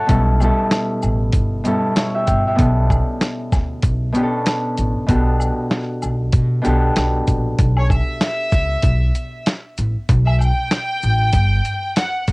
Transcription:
Already playing: harp F#3 A4 C#5 E5 F#5 A5
0.07 upright bass B1, harp B2 G3 C#4 E4 A4, kick, closed hi-hat, shaker
0.40 harp B2 G3 C#4 E4 A4, high woodblock, shaker
0.71 snare, closed hi-hat, shaker
1.02 upright bass A1, high woodblock, shaker
1.32 upright bass G1, kick, closed hi-hat, shaker
1.64 harp B2 G3 C#4 E4 A4, closed hi-hat, shaker
1.95 harp E4 C#5, snare, closed hi-hat, shaker
2.15 harp G4 E5
2.27 upright bass G1, harp G5, kick, closed hi-hat, shaker
2.47 harp G4 E5
2.55 harp B2 B3 C#4 D4 A4, kick, closed hi-hat, shaker
2.59 upright bass B1
2.90 kick, high woodblock, shaker
3.21 snare, closed hi-hat, shaker
3.52 upright bass D2, kick, snare, high woodblock, shaker
3.82 upright bass B1, kick, closed hi-hat, shaker
4.13 harp B2 B3 C#4 D4 G4, closed hi-hat, shaker
4.23 harp A4
4.46 snare, closed hi-hat, shaker
4.77 upright bass A1, closed hi-hat, shaker
5.07 upright bass B1, harp B2 B3 D4 F#4 G4 A4, kick, closed hi-hat, shaker
5.40 high woodblock, shaker
5.71 snare, closed hi-hat, shaker
6.02 upright bass B1, high woodblock, shaker
6.33 upright bass B2, kick, closed hi-hat, shaker
6.62 upright bass B1, harp B2 B3 D4 F#4 G4 A4, closed hi-hat, shaker
6.96 upright bass B1, snare, closed hi-hat, shaker
7.28 upright bass A#1, kick, closed hi-hat, shaker
7.59 upright bass B1, kick, closed hi-hat, shaker
7.77 violin section C#5, high woodblock
7.90 violin section E5, kick, high woodblock, shaker
8.21 snare, closed hi-hat, shaker
8.52 upright bass C#2, kick, snare, shaker
8.82 upright bass B1, kick, closed hi-hat, shaker
9.15 closed hi-hat, shaker
9.46 snare, closed hi-hat, shaker
9.78 upright bass A1, closed hi-hat, shaker
10.09 upright bass B1, kick, closed hi-hat, shaker
10.27 violin section E5, high woodblock
10.41 violin section G5, high woodblock, shaker
10.71 snare, closed hi-hat, shaker
11.02 upright bass A1, shaker
11.33 upright bass G1, kick, closed hi-hat, shaker
11.65 closed hi-hat, shaker
11.96 violin section F#5, snare, closed hi-hat, shaker
12.28 upright bass G1, kick, closed hi-hat, shaker

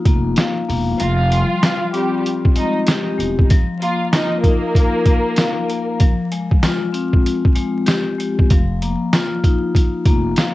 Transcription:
Already playing: vibraphone F3 A#3 D#4 F4
0.06 upright bass F1, vibraphone A#3, kick, closed hi-hat
0.36 vibraphone F5, snare, closed hi-hat
0.68 upright bass E1, vibraphone A#3, open hi-hat
1.00 upright bass F1, vibraphone F3, violin section F4 F5, closed hi-hat
1.32 vibraphone G3, closed hi-hat
1.63 vibraphone F4, snare, closed hi-hat, tambourine
1.93 violin section G3 G4, vibraphone C4, closed hi-hat
2.26 closed hi-hat
2.45 kick
2.56 vibraphone G#3, violin section D#4 D#5, closed hi-hat
2.86 vibraphone G4, snare, closed hi-hat, tambourine
3.18 upright bass E1, vibraphone G#3, closed hi-hat
3.39 kick
3.50 vibraphone F3, kick, closed hi-hat
3.81 vibraphone A#3, violin section F4 F5, closed hi-hat
4.13 violin section D#4 D#5, vibraphone F4, snare, closed hi-hat, tambourine
4.41 violin section A#3 A#4, vibraphone D#4, kick, closed hi-hat
4.75 kick, closed hi-hat
5.06 vibraphone A#3, kick, closed hi-hat
5.36 vibraphone F5, snare, closed hi-hat, tambourine
5.68 vibraphone A#3, closed hi-hat
6.00 vibraphone F3, kick, closed hi-hat
6.32 vibraphone G#3, closed hi-hat
6.51 kick
6.63 vibraphone F4, snare, closed hi-hat, tambourine
6.93 vibraphone C4, closed hi-hat
7.13 kick
7.26 closed hi-hat
7.45 kick
7.56 vibraphone G#3, closed hi-hat
7.86 vibraphone G4, snare, closed hi-hat, tambourine
8.18 vibraphone G#3, closed hi-hat
8.39 kick
8.50 upright bass F1, vibraphone F3, kick, closed hi-hat
8.82 vibraphone A#3, closed hi-hat
9.13 vibraphone F4, snare, closed hi-hat, tambourine
9.44 vibraphone D#4, kick, closed hi-hat
9.75 kick, closed hi-hat
10.06 upright bass F1, vibraphone A#3, kick, closed hi-hat
10.36 vibraphone F5, snare, closed hi-hat, tambourine

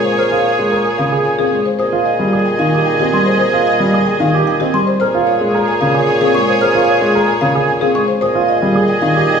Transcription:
Already playing: bassoon A#2, violin section G#4 C#5, oboe G#4
0.05 marimba C5
0.18 grand piano A#4, marimba C5, xylophone F6
0.32 grand piano F4
0.45 marimba C#5
0.59 grand piano G#3
0.72 grand piano A#4
0.85 marimba G#5
0.98 grand piano C#3, marimba F5
1.12 grand piano G#4
1.25 marimba G#5
1.39 grand piano C4, marimba G#4, xylophone F5
1.52 grand piano G#3
1.65 marimba C5
1.79 bassoon A#2, oboe G#4, grand piano G#4, violin section G#4 D#5, marimba C5, xylophone D#6
1.93 grand piano F4
2.05 marimba D#5
2.19 grand piano G3
2.33 grand piano G#4
2.46 marimba G5
2.59 grand piano D#3, marimba F5
2.73 grand piano G4
2.86 marimba G5
2.99 grand piano C4, marimba G4, xylophone D#5
3.13 grand piano G3, xylophone C6
3.26 marimba C5
3.39 grand piano G#4, marimba C5, xylophone D#6
3.54 grand piano F4
3.67 marimba D#5
3.80 grand piano G3
3.94 grand piano G#4
4.07 marimba G5
4.20 grand piano D#3, marimba F5
4.34 grand piano G4
4.47 marimba G5
4.60 grand piano C4, marimba G4, xylophone D#5
4.74 grand piano G3, xylophone C6
4.87 marimba C5
5.00 bassoon A#2, oboe G#4, violin section G#4 C#5, grand piano A#4, marimba C5, xylophone F6
5.15 grand piano F4
5.27 marimba C#5
5.41 grand piano G#3
5.55 grand piano A#4
5.68 marimba G#5
5.81 grand piano C#3, marimba F5
5.95 grand piano G#4
6.08 marimba G#5
6.21 grand piano C4, marimba G#4, xylophone F5
6.35 grand piano G#3, xylophone C#6
6.48 marimba C5
6.61 grand piano A#4, marimba C5, xylophone F6
6.75 grand piano F4
6.88 marimba C#5
7.01 grand piano G#3
7.15 grand piano A#4
7.28 marimba G#5
7.41 grand piano C#3, marimba F5
7.55 grand piano G#4
7.68 marimba G#5
7.81 grand piano C4, marimba G#4, xylophone F5
7.95 grand piano G#3, xylophone C#6
8.08 marimba C5
8.21 bassoon A#2, oboe G#4, grand piano G#4, violin section G#4 D#5, marimba C5, xylophone D#6
8.35 grand piano F4
8.48 marimba D#5
8.62 grand piano G3
8.76 grand piano G#4
8.88 marimba G5
9.02 grand piano D#3, marimba F5
9.16 grand piano G4
9.29 marimba G5

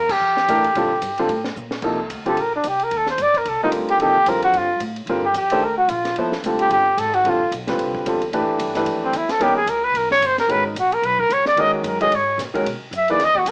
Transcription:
Already playing: upright bass E2, trumpet A#4
0.09 trumpet G4, kick, crash
0.19 upright bass F2
0.37 snare
0.48 upright bass A2, grand piano E3 A3 D4 G4 A#4, hi-hat pedal, ride
0.64 ride
0.75 upright bass A#2, grand piano D3 G3 C4 F4 A4, ride
1.01 upright bass G2, hi-hat pedal, ride
1.18 grand piano D3 G3 C4 F4 A4, ride
1.28 upright bass A2, ride
1.44 snare
1.56 upright bass A#2, hi-hat pedal
1.71 snare
1.82 upright bass C2, grand piano C3 F3 A#3 D#4 A4, kick, crash
2.10 upright bass D2, hi-hat pedal, ride
2.25 grand piano D3 G3 C4 F4 G4, trumpet A4, ride
2.36 upright bass A#1, trumpet A#4, ride
2.56 trumpet D4
2.64 upright bass C2, hi-hat pedal, ride
2.68 trumpet G4
2.79 trumpet A#4, ride
2.91 upright bass D#2, ride
2.97 trumpet A4
3.06 trumpet C5, snare
3.18 upright bass G2, hi-hat pedal, ride
3.22 trumpet D5
3.34 trumpet A#4, kick, ride
3.45 upright bass C2, trumpet A4, ride
3.61 grand piano D3 G3 C4 F4 A#4, trumpet D#4, muted upright bass stroke
3.72 upright bass D2, hi-hat pedal, ride
3.88 trumpet G4, ride
3.99 upright bass D#2, grand piano C3 F3 A#3 D#4 A4, trumpet G4, ride
4.26 upright bass F2, grand piano D3 G3 C4 F4 C5, trumpet A#4, hi-hat pedal, ride
4.42 trumpet F#4, ride
4.53 upright bass G2, ride
4.57 trumpet F4
4.80 upright bass A2, hi-hat pedal, ride
4.96 ride
5.06 upright bass G2, grand piano D3 G3 C4 F4, ride
5.10 grand piano A#4
5.26 trumpet G4
5.34 upright bass F2, trumpet G4, hi-hat pedal, ride
5.50 grand piano D#3 A3 D4 G4 C5, ride
5.61 upright bass D2, trumpet A#4
5.78 trumpet F#4
5.88 upright bass A#1, trumpet F4, hi-hat pedal, ride
6.05 snare, ride
6.16 upright bass F2, grand piano F3 B3 E4 A4 C5, ride
6.32 snare
6.43 upright bass D2, grand piano D3 G3 C4 F4 A4, hi-hat pedal, ride
6.59 trumpet G4, ride
6.69 upright bass G1, trumpet G4, ride
6.97 upright bass G#1, trumpet A4, hi-hat pedal, ride
7.13 trumpet F#4, ride
7.24 upright bass A1, grand piano D3 G3 C4 F4 A4, ride
7.29 trumpet F4
7.51 upright bass B1, hi-hat pedal, ride
7.67 grand piano D3 G3 C4 F4 B4, snare, ride
7.78 upright bass C2, ride
7.94 kick
8.05 upright bass E2, grand piano D3 G3 C4 F4 A4, hi-hat pedal, ride
8.22 ride
8.32 upright bass A2, grand piano E3 A3 D4 G4 B4, ride
8.48 muted upright bass stroke
8.58 upright bass G2, hi-hat pedal, ride
8.75 grand piano E3 A3 D4 G4 B4, snare, ride
8.85 upright bass F2, ride
9.04 trumpet C4
9.13 upright bass E2, hi-hat pedal, ride
9.17 trumpet E4
9.29 trumpet A4, muted upright bass stroke, snare, ride
9.39 upright bass D#2, grand piano G3 B3 C#4 D#4 A#4, trumpet G4, ride
9.57 trumpet G#4
9.66 upright bass C#2, trumpet A#4, hi-hat pedal, ride
9.84 trumpet B4
9.94 upright bass B1, trumpet A#4, ride
10.11 trumpet C#5, snare
10.21 upright bass G1, hi-hat pedal, ride
10.26 trumpet C5
10.38 trumpet A#4, snare, ride
10.48 upright bass G#1, grand piano D#3 G#3 C#4 F#4 A#4, trumpet B4, ride
10.67 trumpet D#4
10.75 upright bass A#1, hi-hat pedal, ride
10.79 trumpet F#4
10.92 trumpet A#4, ride
11.02 upright bass B1, trumpet B4, ride
11.19 trumpet A#4, kick
11.29 upright bass C#2, trumpet C#5, hi-hat pedal, ride
11.46 trumpet D5, snare
11.57 upright bass D#2, grand piano D#3 G#3 C#4 F#4 A#4, trumpet D#5, ride
11.74 trumpet F#4
11.83 upright bass F#2, trumpet A#4, hi-hat pedal, ride
12.01 grand piano D#3 G#3 C#4 F#4 G#4, trumpet D#5, ride
12.11 upright bass G#2, ride
12.15 trumpet C#5
12.38 upright bass A#2, snare, hi-hat pedal, ride
12.54 grand piano D#3 G#3 C#4 F#4 A#4, muted upright bass stroke, kick, ride
12.64 upright bass B2, ride
12.81 muted upright bass stroke
12.91 upright bass F#2, hi-hat pedal, ride
12.97 trumpet E5
13.08 grand piano E3 A#3 D#4 G#4 B4, trumpet D5, ride
13.19 upright bass D#2, snare, ride
13.24 trumpet D#5
13.35 trumpet F#4, kick
13.45 upright bass C#2, hi-hat pedal, ride

